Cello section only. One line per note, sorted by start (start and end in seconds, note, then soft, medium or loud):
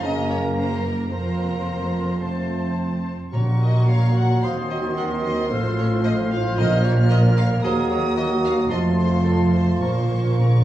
0.02 1.09 F#2 medium
1.11 3.13 F2 soft
3.33 4.39 A#2 soft
4.43 5.51 D#3 medium
5.51 6.57 A2 medium
6.58 7.63 A#2 medium
7.63 8.69 D#2 medium
8.71 9.82 F2 medium
9.82 10.64 A#2 medium